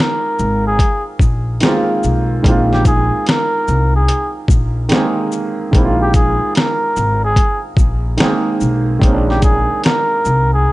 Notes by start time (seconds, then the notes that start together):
Already playing: D#3 G#3 A#3 C4 F4
0.00 A#4, snare
0.39 G#1, shaker
0.67 G#4
0.79 kick, closed hi-hat
1.19 A#1, kick, shaker
1.60 D#3 G#3 A#3, snare, closed hi-hat
1.66 C4 F4
2.03 B1, shaker
2.43 A#1 D#3 G#3 A#3, kick, closed hi-hat
2.48 C4 F4
2.73 G4, snare
2.85 G#4, kick, closed hi-hat, shaker
3.27 A#4, snare, closed hi-hat
3.68 C2, shaker
3.96 G#4
4.09 closed hi-hat
4.48 A#1, kick, shaker
4.89 D#3 G#3 A#3, snare, closed hi-hat
4.94 C4 G#4
5.32 shaker
5.71 A#1 D#3 G#3 A#3, kick, closed hi-hat
5.76 C4 E4
5.85 F4
6.02 G4
6.14 G#4, kick, closed hi-hat, shaker
6.55 A#4, snare, closed hi-hat
6.96 G#1, shaker
7.24 G#4
7.36 kick, closed hi-hat
7.77 A#1, kick, shaker
8.17 D#3 G#3 A#3, snare, closed hi-hat
8.22 C4 G#4
8.61 B1, shaker
8.99 A#1 D#3 G#3 A#3, kick, closed hi-hat
9.05 C4 C#4
9.13 D4
9.30 G4, snare
9.42 G#4, kick, closed hi-hat, shaker
9.83 A#4, snare, closed hi-hat
10.25 C2, shaker
10.54 G#4